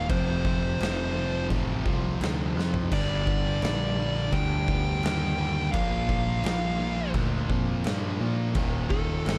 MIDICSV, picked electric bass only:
0, 0, Header, 1, 2, 480
1, 0, Start_track
1, 0, Tempo, 705053
1, 66, Time_signature, 4, 2, 24, 8
1, 6387, End_track
2, 0, Start_track
2, 0, Title_t, "Picked electric bass"
2, 0, Program_c, 0, 34
2, 64, Note_on_c, 0, 29, 96
2, 523, Note_off_c, 0, 29, 0
2, 538, Note_on_c, 0, 29, 98
2, 1000, Note_off_c, 0, 29, 0
2, 1024, Note_on_c, 0, 33, 97
2, 1254, Note_off_c, 0, 33, 0
2, 1263, Note_on_c, 0, 36, 94
2, 1494, Note_off_c, 0, 36, 0
2, 1506, Note_on_c, 0, 38, 88
2, 1736, Note_off_c, 0, 38, 0
2, 1748, Note_on_c, 0, 41, 94
2, 1976, Note_off_c, 0, 41, 0
2, 1987, Note_on_c, 0, 31, 94
2, 2445, Note_off_c, 0, 31, 0
2, 2468, Note_on_c, 0, 34, 103
2, 2926, Note_off_c, 0, 34, 0
2, 2943, Note_on_c, 0, 38, 98
2, 3403, Note_off_c, 0, 38, 0
2, 3427, Note_on_c, 0, 39, 88
2, 3885, Note_off_c, 0, 39, 0
2, 3907, Note_on_c, 0, 34, 100
2, 4365, Note_off_c, 0, 34, 0
2, 4385, Note_on_c, 0, 34, 99
2, 4844, Note_off_c, 0, 34, 0
2, 4861, Note_on_c, 0, 38, 96
2, 5093, Note_off_c, 0, 38, 0
2, 5102, Note_on_c, 0, 41, 99
2, 5333, Note_off_c, 0, 41, 0
2, 5349, Note_on_c, 0, 43, 94
2, 5577, Note_off_c, 0, 43, 0
2, 5583, Note_on_c, 0, 46, 96
2, 5814, Note_off_c, 0, 46, 0
2, 5822, Note_on_c, 0, 27, 106
2, 6282, Note_off_c, 0, 27, 0
2, 6301, Note_on_c, 0, 31, 100
2, 6387, Note_off_c, 0, 31, 0
2, 6387, End_track
0, 0, End_of_file